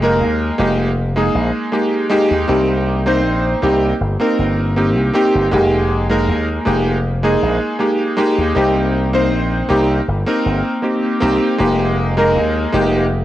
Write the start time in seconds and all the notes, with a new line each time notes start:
Already playing: F1
0.02 G#3 A#3 D#4 A#4
0.21 D#2
0.58 F1 G#3 A#3 D#4 G4
1.16 G#3 A#3 D#4 G#4
1.35 A#1
1.72 G#3 A#3 D#4 G4
2.10 G#3 A#3 D#4 G4
2.31 D#2
2.48 C2 A#3 C4 D#4 G4
3.06 A#3 C4 D#4 C5
3.25 A#1
3.62 C2 A#3 C4 D#4 G4
4.01 G1
4.20 A#3 C4 D#4 A#4
4.39 G1
4.76 A#3 C4 D#4 G4
4.96 C2
5.14 A#3 C4 D#4 G4
5.35 G1
5.51 F1 G#3 A#3 D#4 G4
6.09 G#3 A#3 D#4 A#4
6.28 D#2
6.65 F1 G#3 A#3 D#4 G4
7.23 G#3 A#3 D#4 G#4
7.42 A#1
7.79 G#3 A#3 D#4 G4
8.17 G#3 A#3 D#4 G4
8.38 D#2
8.55 C2 A#3 C4 D#4 G4
9.13 A#3 C4 D#4 C5
9.32 A#1
9.69 C2 A#3 C4 D#4 G4
10.08 G1
10.27 A#3 C4 D#4 A#4
10.46 G1
10.82 A#3 C4 D#4 G4
11.20 C2 A#3 C4 D#4 G4
11.58 F1 G#3 A#3 D#4 G4
12.17 G#3 A#3 D#4 A#4
12.36 D#2
12.72 F1 G#3 A#3 D#4 G4